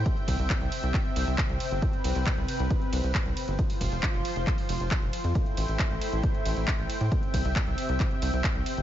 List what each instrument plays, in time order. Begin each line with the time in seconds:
Already playing: analog synth pad G5
0.06 analog synth pad C3 C4 E5, kick, closed hi-hat
0.17 closed hi-hat
0.28 analog synth bass C2, kick, open hi-hat, ride
0.39 analog synth bass C2, closed hi-hat
0.50 kick, clap, closed hi-hat
0.61 analog synth bass C2, closed hi-hat
0.72 open hi-hat, ride
0.83 analog synth bass C2, closed hi-hat
0.94 kick, clap, closed hi-hat
1.05 closed hi-hat
1.16 analog synth bass C2, open hi-hat, ride
1.27 analog synth bass C2, closed hi-hat
1.38 kick, clap, closed hi-hat
1.49 analog synth bass C2, closed hi-hat
1.60 open hi-hat, ride
1.71 analog synth bass G1, closed hi-hat
1.82 analog synth pad B4, kick, closed hi-hat
1.93 closed hi-hat
2.04 analog synth bass C2, open hi-hat, ride
2.15 analog synth bass C2, closed hi-hat
2.26 kick, clap, closed hi-hat
2.37 analog synth bass C2, closed hi-hat
2.48 open hi-hat, ride
2.60 analog synth bass C2, closed hi-hat
2.71 kick, closed hi-hat
2.82 closed hi-hat
2.93 analog synth bass C2, open hi-hat, ride
3.04 analog synth bass C2, closed hi-hat
3.15 kick, clap, closed hi-hat
3.26 analog synth bass C2, closed hi-hat
3.37 open hi-hat, ride
3.48 analog synth bass G1, closed hi-hat
3.59 analog synth pad F3 F4 C5, kick, closed hi-hat
3.70 open hi-hat
3.81 analog synth bass F1, kick, open hi-hat, ride
3.92 analog synth bass F1, closed hi-hat
4.03 kick, clap, closed hi-hat
4.14 analog synth bass F1, closed hi-hat
4.25 open hi-hat, ride
4.36 analog synth bass F1, closed hi-hat
4.47 kick, clap, closed hi-hat
4.58 open hi-hat
4.69 analog synth bass F1, open hi-hat, ride
4.80 analog synth bass F1, closed hi-hat
4.91 kick, clap, closed hi-hat
5.02 analog synth bass F1, closed hi-hat
5.13 open hi-hat, ride
5.24 analog synth bass F2, closed hi-hat
5.35 analog synth pad A3 E4 C5 G5, kick, closed hi-hat
5.46 closed hi-hat
5.57 analog synth bass A1, open hi-hat, ride
5.68 analog synth bass A1, closed hi-hat
5.79 kick, clap, closed hi-hat
5.90 analog synth bass A1, closed hi-hat
6.01 open hi-hat, ride
6.12 analog synth bass A1, closed hi-hat
6.23 kick, closed hi-hat
6.35 closed hi-hat
6.46 analog synth bass A1, open hi-hat, ride
6.57 analog synth bass A1, closed hi-hat
6.68 kick, clap, closed hi-hat
6.79 analog synth bass A1, closed hi-hat
6.90 open hi-hat, ride
7.01 analog synth bass A2, closed hi-hat
7.12 analog synth pad C3 C4 E5, kick, closed hi-hat
7.23 closed hi-hat
7.34 analog synth bass C2, kick, open hi-hat, ride
7.45 analog synth bass C2, closed hi-hat
7.56 kick, clap, closed hi-hat
7.67 analog synth bass C2, closed hi-hat
7.78 open hi-hat, ride
7.89 analog synth bass C2, closed hi-hat
8.00 kick, clap, closed hi-hat
8.11 closed hi-hat
8.22 analog synth bass C2, open hi-hat, ride
8.33 analog synth bass C2, closed hi-hat
8.44 kick, clap, closed hi-hat
8.55 analog synth bass C2, closed hi-hat
8.66 open hi-hat, ride
8.77 analog synth bass G1, closed hi-hat